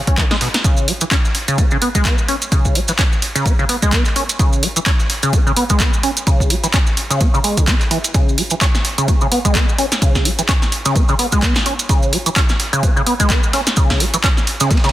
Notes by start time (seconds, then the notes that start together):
0.07 C#4, kick, closed hi-hat
0.17 C#3, kick, clap, closed hi-hat, ride
0.31 G#3, snare
0.41 B2, snare, open hi-hat, ride
0.54 snare, closed hi-hat, ride
0.64 C#3, kick, closed hi-hat, ride, maracas
0.77 maracas
0.88 G#3, open hi-hat, ride
1.01 E3, closed hi-hat, maracas
1.11 C#4, kick, snare, clap, closed hi-hat, ride, maracas
1.25 snare, maracas
1.35 snare, open hi-hat, ride
1.48 C#3, closed hi-hat, maracas
1.58 C#4, kick, closed hi-hat, ride, maracas
1.71 C#3, maracas
1.82 B3, open hi-hat, ride
1.95 G#3, kick, closed hi-hat, maracas
2.05 B3, kick, snare, clap, closed hi-hat, ride, maracas
2.18 maracas
2.28 C#4, open hi-hat, ride
2.42 closed hi-hat, maracas
2.52 C#3, kick, closed hi-hat, ride, maracas
2.65 kick, maracas
2.75 G#3, open hi-hat, ride
2.88 E3, snare, closed hi-hat, maracas
2.99 C#4, kick, snare, clap, closed hi-hat, ride, maracas
3.12 snare, maracas
3.22 open hi-hat, ride
3.35 C#3, snare, closed hi-hat, maracas
3.46 C#4, kick, closed hi-hat, ride, maracas
3.59 C#3, maracas
3.69 B3, open hi-hat, ride
3.82 G#3, kick, closed hi-hat, maracas
3.92 B3, kick, snare, clap, closed hi-hat, ride, maracas
4.05 clap, ride, maracas
4.16 C#4, open hi-hat, ride
4.29 closed hi-hat, ride, maracas
4.39 C#3, kick, closed hi-hat, ride, maracas
4.53 maracas
4.63 G#3, open hi-hat, ride
4.76 E3, closed hi-hat, maracas
4.86 C#4, kick, snare, clap, closed hi-hat, ride, maracas
5.00 snare, maracas
5.10 snare, open hi-hat, ride
5.23 C#3, closed hi-hat, maracas
5.33 C#4, kick, closed hi-hat, ride, maracas
5.46 C#3, maracas
5.56 B3, open hi-hat, ride
5.70 G#3, kick, closed hi-hat, maracas
5.80 B3, kick, snare, clap, closed hi-hat, ride, maracas
5.93 maracas
6.03 C#4, open hi-hat, ride
6.17 closed hi-hat, maracas
6.27 C#3, kick, closed hi-hat, ride, maracas
6.40 kick, maracas
6.50 G#3, open hi-hat, ride
6.64 E3, snare, closed hi-hat, maracas
6.73 C#4, kick, snare, clap, closed hi-hat, ride, maracas
6.87 snare, maracas
6.97 open hi-hat, ride
7.10 C#3, snare, closed hi-hat, maracas
7.21 C#4, kick, closed hi-hat, ride, maracas
7.34 C#3, maracas
7.44 G#3, open hi-hat, ride
7.57 C#3, kick, closed hi-hat, maracas
7.67 C#4, kick, snare, clap, closed hi-hat, ride, maracas
7.81 clap, ride, maracas
7.91 E3, open hi-hat, ride
8.04 closed hi-hat, ride, maracas
8.14 C#3, kick, closed hi-hat, ride, maracas
8.29 maracas
8.38 G#3, open hi-hat, ride
8.50 E3, closed hi-hat, maracas
8.61 C#4, kick, snare, clap, closed hi-hat, ride, maracas
8.75 snare, maracas
8.85 snare, open hi-hat, ride
8.98 C#3, closed hi-hat, maracas
9.08 C#4, kick, closed hi-hat, ride, maracas
9.21 C#3, maracas
9.31 B3, open hi-hat, ride
9.45 G#3, kick, closed hi-hat, maracas
9.55 B3, kick, snare, clap, closed hi-hat, ride, maracas
9.69 maracas
9.78 C#4, open hi-hat, ride
9.92 snare, closed hi-hat, maracas
10.02 C#3, kick, closed hi-hat, ride, maracas
10.15 kick, snare, maracas
10.25 G#3, open hi-hat, ride
10.39 E3, snare, closed hi-hat, maracas
10.49 C#4, kick, snare, clap, closed hi-hat, ride, maracas
10.62 snare, maracas
10.72 open hi-hat, ride
10.85 C#3, snare, closed hi-hat, maracas
10.96 C#4, kick, closed hi-hat, ride, maracas
11.08 C#3, maracas
11.19 B3, open hi-hat, ride
11.32 G#3, kick, closed hi-hat, maracas
11.42 B3, kick, snare, clap, closed hi-hat, ride, maracas
11.56 snare, clap, ride, maracas
11.66 C#4, open hi-hat, ride
11.79 closed hi-hat, ride, maracas
11.89 C#3, kick, closed hi-hat, ride, maracas
12.03 maracas
12.13 G#3, open hi-hat, ride
12.26 E3, closed hi-hat, maracas
12.36 C#4, kick, snare, clap, closed hi-hat, ride, maracas
12.49 snare, maracas
12.60 snare, open hi-hat, ride
12.73 C#3, closed hi-hat, maracas
12.83 C#4, kick, closed hi-hat, ride, maracas
12.96 C#3, maracas
13.06 B3, open hi-hat, ride
13.20 G#3, kick, closed hi-hat, maracas
13.30 B3, kick, snare, clap, closed hi-hat, ride, maracas
13.43 maracas
13.53 C#4, snare, open hi-hat, ride
13.67 snare, closed hi-hat, maracas
13.76 C#3, kick, closed hi-hat, ride, maracas
13.90 kick, snare, ride, maracas
14.00 G#3, snare, open hi-hat
14.14 E3, closed hi-hat, ride, maracas
14.24 C#4, kick, snare, clap, closed hi-hat, ride, maracas
14.37 snare, maracas
14.47 open hi-hat, ride
14.60 C#3, snare, closed hi-hat, maracas
14.71 C#4, kick, snare, closed hi-hat, ride, maracas
14.77 snare, ride
14.84 C#3, snare, ride, maracas
14.89 snare, ride